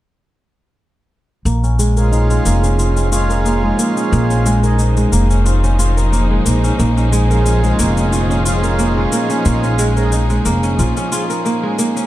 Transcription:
1.45 2.37 A#1 medium
1.45 12.07 A#2 medium
1.45 2.45 A#3 medium
1.45 shaker soft
1.62 12.07 F3 medium
1.62 2.63 C#4 medium
1.62 shaker soft
1.79 2.29 G#3 medium
1.79 12.07 G#4 medium
1.79 shaker medium
1.88 12.07 C5 medium
1.95 3.08 G#3 medium
1.95 3.09 C#4 medium
1.95 3.24 A#4 medium
1.95 shaker soft
1.99 12.07 C#4 medium
1.99 3.10 F4 medium
2.12 3.74 D#4 medium
2.12 shaker soft
2.21 12.07 D#4 medium
2.30 3.62 G#3 medium
2.30 shaker soft
2.45 3.70 F1 medium
2.45 3.45 A#3 medium
2.45 shaker medium
2.63 2.96 C#4 medium
2.63 shaker soft
2.79 3.12 F4 medium
2.79 shaker soft
2.97 3.96 C#4 medium
2.97 shaker soft
3.10 4.58 G#3 medium
3.10 4.59 C#4 medium
3.10 4.63 F4 medium
3.10 shaker medium
3.14 4.60 F4 loud
3.30 4.57 A#4 medium
3.30 shaker soft
3.45 3.78 A#3 medium
3.45 shaker soft
3.63 4.45 G#3 medium
3.79 4.12 A#3 medium
3.79 shaker medium
3.97 4.30 C#4 medium
3.97 shaker soft
4.12 5.04 A#1 medium
4.12 5.12 A#3 medium
4.12 shaker soft
4.30 5.29 C#4 medium
4.30 shaker soft
4.46 4.95 G#3 medium
4.46 shaker medium
4.62 4.80 G#3 medium
4.62 4.81 C#4 medium
4.62 4.81 D#4 medium
4.62 5.91 A#4 medium
4.62 shaker soft
4.79 6.41 D#4 medium
4.79 shaker soft
4.97 6.29 G#3 medium
4.97 shaker soft
5.12 6.37 F1 medium
5.12 6.12 A#3 medium
5.12 shaker medium
5.30 5.63 C#4 medium
5.30 shaker soft
5.45 5.78 F4 medium
5.45 shaker soft
5.63 6.63 C#4 medium
5.63 shaker soft
5.78 5.91 G#3 medium
5.78 5.91 C#4 medium
5.78 7.30 F4 medium
5.78 5.92 F4 medium
5.78 shaker medium
5.97 7.24 A#4 medium
5.97 shaker soft
6.12 6.45 A#3 medium
6.12 shaker soft
6.30 7.11 G#3 medium
6.46 6.68 A#1 medium
6.46 6.79 A#3 medium
6.46 shaker medium
6.64 6.97 C#4 medium
6.64 shaker soft
6.79 7.71 A#1 medium
6.79 7.79 A#3 medium
6.79 shaker soft
6.97 7.96 C#4 medium
6.97 shaker soft
7.12 7.62 G#3 medium
7.12 shaker medium
7.28 8.41 G#3 medium
7.28 8.42 C#4 medium
7.28 8.58 A#4 medium
7.28 shaker soft
7.32 8.43 F4 medium
7.46 9.08 D#4 medium
7.46 shaker soft
7.64 8.96 G#3 medium
7.64 shaker soft
7.79 9.04 F1 medium
7.79 8.79 A#3 medium
7.79 shaker medium
7.97 8.29 C#4 medium
7.97 shaker soft
8.12 8.45 F4 medium
8.12 shaker soft
8.30 9.29 C#4 medium
8.30 shaker soft
8.43 9.91 G#3 medium
8.43 9.92 C#4 medium
8.43 9.96 F4 medium
8.43 9.93 F4 loud
8.43 shaker medium
8.63 9.90 A#4 medium
8.63 shaker soft
8.79 9.12 A#3 medium
8.79 shaker soft
8.97 9.78 G#3 medium
9.12 9.45 A#3 medium
9.12 shaker medium
9.30 9.63 C#4 medium
9.30 shaker soft
9.45 10.37 A#1 medium
9.45 10.45 A#3 medium
9.45 shaker soft
9.63 10.63 C#4 medium
9.63 shaker soft
9.79 10.29 G#3 medium
9.79 shaker medium
9.95 10.14 G#3 medium
9.95 10.14 C#4 medium
9.95 10.15 D#4 loud
9.95 11.24 A#4 medium
9.95 shaker soft
10.12 11.74 D#4 medium
10.12 shaker soft
10.30 11.62 G#3 medium
10.30 shaker soft
10.45 10.78 F1 medium
10.45 11.45 A#3 medium
10.45 shaker medium
10.63 10.97 C#4 medium
10.63 shaker soft
10.79 10.91 A#1 medium
10.79 11.12 F4 medium
10.79 shaker soft
10.97 11.96 C#4 medium
10.97 shaker soft
11.11 11.24 G#3 medium
11.11 11.25 C#4 medium
11.11 12.07 F4 medium
11.11 11.25 F4 medium
11.11 shaker medium
11.30 12.07 A#4 medium
11.30 shaker soft
11.46 11.78 A#3 medium
11.46 shaker soft
11.63 12.07 G#3 medium
11.79 12.07 A#3 medium
11.79 shaker medium
11.96 12.07 C#4 medium
11.96 shaker soft

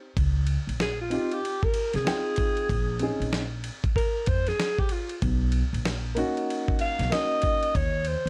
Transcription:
0.17 0.56 C#2 medium
0.17 kick loud
0.17 ride medium
0.47 ride medium
0.67 1.16 A#1 medium
0.67 ride soft
0.80 0.99 G#4 medium
0.80 snare loud
0.80 hi-hat pedal soft
0.80 ride medium
1.01 1.35 F4 medium
1.10 1.35 C4 medium
1.10 1.36 D#4 medium
1.10 1.36 F4 medium
1.10 1.37 G4 medium
1.10 ride medium
1.31 1.66 G4 medium
1.31 ride soft
1.45 ride medium
1.63 1.95 A#4 medium
1.63 kick medium
1.74 ride medium
1.93 2.03 C2 medium
1.93 3.49 G#4 loud
1.93 snare soft
1.93 ride soft
2.05 2.69 C4 medium
2.05 2.69 D#4 soft
2.05 2.70 F4 medium
2.05 2.70 G5 medium
2.05 snare loud
2.05 hi-hat pedal soft
2.05 ride medium
2.36 kick medium
2.36 ride medium
2.57 ride soft
2.69 3.08 A#1 loud
2.69 kick loud
2.69 ride medium
2.99 3.40 C4 medium
2.99 3.40 C#4 medium
2.99 3.41 D#4 medium
2.99 3.41 G#4 medium
2.99 ride medium
3.20 3.68 A#1 medium
3.20 ride soft
3.33 snare loud
3.33 hi-hat pedal soft
3.33 ride medium
3.64 ride medium
3.84 kick medium
3.84 ride soft
3.96 4.29 A#4 loud
3.96 kick medium
3.96 ride medium
4.26 4.51 F2 medium
4.26 4.50 C5 loud
4.26 kick medium
4.26 ride medium
4.47 4.81 G#4 medium
4.47 snare soft
4.47 ride soft
4.60 snare loud
4.60 hi-hat pedal medium
4.60 ride medium
4.79 4.93 G4 medium
4.79 kick medium
4.89 5.23 F4 medium
4.89 ride medium
5.09 ride soft
5.22 5.61 B1 loud
5.22 kick loud
5.22 ride medium
5.52 ride medium
5.73 6.21 A#1 medium
5.73 ride soft
5.85 snare loud
5.85 hi-hat pedal soft
5.85 ride medium
6.15 7.06 A#3 medium
6.15 7.07 C#4 medium
6.15 7.07 D#4 medium
6.15 7.08 F#4 loud
6.15 ride medium
6.37 ride soft
6.50 ride medium
6.68 kick medium
6.79 7.14 F5 loud
6.79 ride medium
6.99 7.09 B1 medium
6.99 snare soft
6.99 ride soft
7.10 7.74 A#3 medium
7.10 7.75 C#4 medium
7.10 7.75 D#4 medium
7.10 7.76 F#4 medium
7.10 7.77 D#5 loud
7.10 snare loud
7.10 hi-hat pedal soft
7.10 ride medium
7.42 kick medium
7.42 ride medium
7.63 ride soft
7.75 8.14 D#2 loud
7.75 8.09 C#5 medium
7.75 kick loud
7.75 ride medium
8.05 8.29 C5 loud
8.05 ride medium
8.26 8.29 D#2 medium

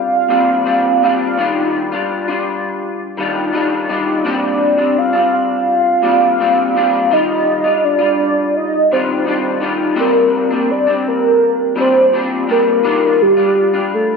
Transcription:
0.00 0.30 G3 soft
0.00 0.29 C4 soft
0.00 0.31 D4 medium
0.00 1.03 F5 loud
0.29 0.64 A#2 medium
0.29 0.64 G3 medium
0.29 0.65 C4 medium
0.29 0.66 D4 medium
0.65 1.01 A#2 medium
0.65 1.02 G3 medium
0.65 1.02 C4 medium
0.65 1.02 D4 medium
1.02 1.38 A#2 medium
1.02 1.37 G3 medium
1.02 1.38 C4 medium
1.02 1.38 D4 medium
1.02 1.71 F5 loud
1.38 1.92 D#3 medium
1.38 1.92 G3 medium
1.38 1.92 D4 medium
1.38 1.90 F4 medium
1.92 2.29 G3 soft
1.92 2.28 D4 medium
1.92 2.27 F4 medium
2.28 3.17 G3 soft
2.28 3.19 D4 medium
2.28 3.20 F4 medium
3.17 3.51 D#3 medium
3.17 3.52 G3 medium
3.17 3.53 D4 medium
3.17 3.54 F4 medium
3.53 3.88 D#3 medium
3.53 3.88 G3 medium
3.53 3.89 D4 medium
3.53 3.90 F4 medium
3.89 4.25 D#3 medium
3.89 4.24 G3 medium
3.89 4.25 D4 medium
3.89 4.26 F4 medium
4.24 4.78 A#2 medium
4.24 4.79 G3 medium
4.24 4.77 C4 medium
4.24 4.76 D4 medium
4.24 5.00 D5 loud
4.77 5.14 G3 soft
4.77 5.14 C4 soft
4.77 5.12 D4 soft
4.98 5.33 F5 loud
5.13 6.02 G3 soft
5.13 6.03 C4 soft
5.13 6.04 D4 medium
5.33 7.15 F5 loud
6.02 6.38 A#2 medium
6.02 6.39 G3 medium
6.02 6.40 C4 medium
6.02 6.40 D4 medium
6.39 6.73 A#2 medium
6.39 6.75 G3 medium
6.39 6.76 C4 medium
6.39 6.76 D4 medium
6.75 7.11 A#2 medium
6.75 7.10 G3 medium
6.75 7.12 C4 medium
6.75 7.12 D4 medium
7.11 7.65 D#3 medium
7.11 7.65 G3 medium
7.11 7.63 F4 medium
7.11 7.86 D#5 loud
7.64 8.00 G3 soft
7.64 8.01 D4 soft
7.64 7.97 F4 medium
7.84 8.58 D5 medium
7.99 8.92 G3 soft
7.99 8.94 F4 medium
8.57 8.91 D#5 medium
8.92 9.25 D#3 medium
8.92 9.26 G3 medium
8.92 9.27 D4 medium
8.92 9.27 F4 medium
8.92 9.59 C5 medium
9.26 9.59 D#3 medium
9.26 9.60 G3 medium
9.26 9.61 D4 medium
9.26 9.62 F4 medium
9.60 9.97 D#3 medium
9.60 9.95 G3 medium
9.60 9.96 D4 medium
9.60 9.97 F4 medium
9.95 10.50 A#2 medium
9.95 10.50 G3 medium
9.95 10.50 C4 medium
9.95 10.49 D4 medium
10.00 10.73 A#4 loud
10.51 10.88 G3 soft
10.51 10.87 C4 soft
10.51 10.86 D4 soft
10.71 11.06 D5 loud
10.87 11.75 G3 soft
10.87 11.76 C4 soft
10.87 11.77 D4 soft
11.08 11.74 A#4 loud
11.75 12.11 A#2 medium
11.75 12.12 G3 medium
11.75 12.13 C4 medium
11.75 12.13 D4 medium
11.80 12.46 C5 loud
12.12 12.46 A#2 medium
12.12 12.47 G3 medium
12.12 12.48 C4 medium
12.12 12.49 D4 medium
12.47 12.84 A#2 soft
12.47 12.83 G3 medium
12.47 12.84 C4 medium
12.47 12.83 D4 medium
12.47 13.24 A#4 loud
12.84 13.38 D#3 medium
12.84 13.38 G3 medium
12.84 13.37 D4 medium
12.84 13.35 F4 medium
13.22 13.96 G4 medium
13.37 13.74 G3 soft
13.37 13.73 D4 soft
13.37 13.72 F4 medium
13.74 14.17 G3 soft
13.74 14.17 D4 soft
13.74 14.17 F4 soft
13.94 14.17 A4 medium

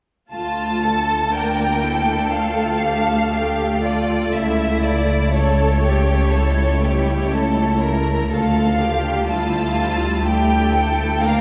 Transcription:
0.32 4.30 D2 soft
0.32 4.31 D2 soft
0.32 1.30 A3 soft
0.32 1.30 F4 soft
0.32 0.81 F4 soft
0.32 1.29 A5 medium
0.84 1.34 A4 soft
1.32 2.32 A#3 soft
1.32 1.83 D4 soft
1.32 1.84 A#4 soft
1.32 2.33 G5 soft
1.83 2.34 E4 soft
1.83 3.35 A4 soft
2.32 4.33 A3 soft
2.32 2.85 F4 soft
2.32 3.84 F5 medium
2.85 3.34 G4 soft
3.35 3.85 G4 soft
3.35 5.30 A4 soft
3.85 4.34 F4 soft
3.85 4.33 D5 soft
4.34 8.29 C#2 soft
4.34 5.32 A3 soft
4.34 5.34 E4 soft
4.34 4.84 E5 soft
4.84 5.34 D5 soft
5.33 6.31 A3 soft
5.33 6.31 A4 soft
5.33 5.83 A4 soft
5.33 7.83 C#5 soft
5.85 6.33 G4 soft
6.33 6.83 A3 soft
6.33 8.29 E4 soft
6.33 6.83 A4 soft
6.84 7.34 G3 soft
6.84 7.34 G4 soft
7.34 8.31 A3 soft
7.34 7.84 A4 soft
7.83 8.33 A#4 soft
8.32 11.41 D2 soft
8.32 9.28 A3 soft
8.32 8.80 F4 soft
8.32 8.81 A4 soft
8.32 9.26 F5 medium
8.81 9.29 F4 soft
8.81 9.30 G4 soft
9.30 10.27 G3 soft
9.30 11.21 E4 soft
9.30 10.27 F4 soft
9.30 10.27 A5 soft
10.25 11.25 A3 soft
10.25 10.75 G4 soft
10.25 11.24 G5 medium
10.75 11.25 A4 soft
11.25 11.41 A#3 soft
11.25 11.41 D4 soft
11.25 11.41 A#4 soft
11.25 11.41 F5 medium

